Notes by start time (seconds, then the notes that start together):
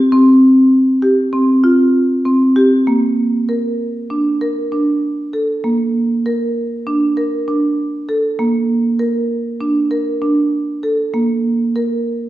0.12 C4
1.02 G4
1.33 C4
1.64 F4
2.25 C4
2.56 G4
2.87 A#3
3.49 A#4
4.10 D4
4.41 A#4
4.72 D4
5.33 A4
5.64 A#3
6.26 A#4
6.87 D4
7.17 A#4
7.48 D4
8.09 A4
8.39 A#3
8.99 A#4
9.61 D4
9.91 A#4
10.22 D4
10.83 A4
11.14 A#3
11.76 A#4